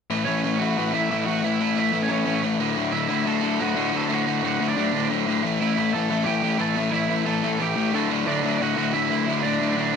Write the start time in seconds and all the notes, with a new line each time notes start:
0.10 A2 E3 A3
0.25 A2 E3 A3 C#4 C#5
0.44 A2 E3 A3
0.59 A2 E3 A3 F#4 F#5
0.77 A2 E3 A3
0.94 A2 E3 A3 E4 E5
1.11 A2 E3 A3
1.26 A2 E3 A3 F#4 F#5
1.43 A2 E3 A3 E4 E5
1.60 A2 E3 A3
1.75 A2 E3 A3 E4
1.80 E5
1.93 A2 E3 A3
2.02 C#4 C#5
2.09 A2 E3 A3 C#4 C#5
2.25 A2 E3 A3
2.43 A2 E3 A3
2.59 D2 A2 D3
2.76 D2 A2 D3
2.92 D2 A2 D3 E4 E5
3.08 D2 A2 D3
3.25 D2 A2 D3 A4 A5
3.41 D2 A2 D3
3.59 D2 A2 D3 F#4
3.63 F#5
3.76 D2 A2 D3
3.93 D2 A2 D3 A4
3.97 A5
4.09 D2 A2 D3
4.13 F#4 F#5
4.27 D2 A2 D3
4.44 D2 A2 D3 F#4 F#5
4.61 D2 A2 D3
4.68 D4 D5
4.76 D2 A2 D3 D4 D5
4.94 D2 A2 D3
5.10 D2 A2 D3
5.28 D2 A2 D3
5.44 A2 E3 A3
5.61 A2 E3 A3 E4 E5
5.76 A2 E3 A3
5.93 A2 E3 A3 A4 A5
6.11 A2 E3 A3
6.24 A2 E3 A3 G4 G5
6.43 A2 E3 A3
6.59 A2 E3 A3 A4 A5
6.75 A2 E3 A3
6.92 A2 E3 A3 E4 E5
7.09 A2 E3 A3
7.25 A2 E3 A3 A4 A5
7.43 A2 E3 A3
7.60 A2 E3 A3 G4 G5
7.77 A2 E3 A3
7.93 D2 A2 D3 A4 A5
8.10 D2 A2 D3
8.27 D2 A2 D3 D4 D5
8.44 D2 A2 D3
8.61 D2 A2 D3 F#4 F#5
8.78 D2 A2 D3
8.93 D2 A2 D3 E4 E5
9.11 D2 A2 D3
9.28 D2 A2 D3
9.43 D2 A2 D3 D4 D5
9.61 D2 A2 D3
9.78 D2 A2 D3
9.93 D2